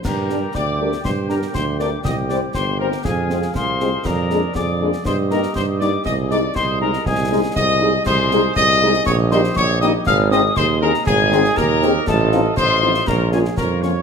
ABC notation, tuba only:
X:1
M:2/4
L:1/8
Q:1/4=120
K:Ablyd
V:1 name="Tuba" clef=bass
G,,2 D,,2 | G,,2 D,,2 | C,,2 G,,,2 | F,,2 C,,2 |
F,,2 F,,2 | G,,2 G,,2 | C,,2 C,,2 | C,,2 C,,2 |
[K:Ab] C,,2 C,,2 | B,,,2 B,,,2 | A,,,2 E,,2 | A,,,2 E,,2 |
=A,,,2 A,,,2 | B,,,2 F,,2 |]